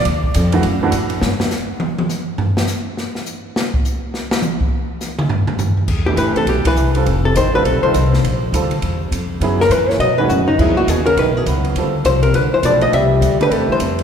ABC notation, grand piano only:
X:1
M:4/4
L:1/8
Q:"Swing" 1/4=205
K:Dm
V:1 name="Grand piano"
z3 [E,A,D_G] z [E,A,D^F] z2 | z8 | z8 | z8 |
z8 | [K:C] z [E,A,DG]3 z3 [G,CFA] | z3 [G,CFA] z [G,CFA] z2 | z2 [G,CFA] z4 z |
[^F,B,E_A] z4 [^D,_A,_D^F] z2 | [^F,B,E^G] z4 z [F,B,E^F]2 | [G,CFA] z4 z [A,DGB]2 | z3 [A,DGB]3 z2 |]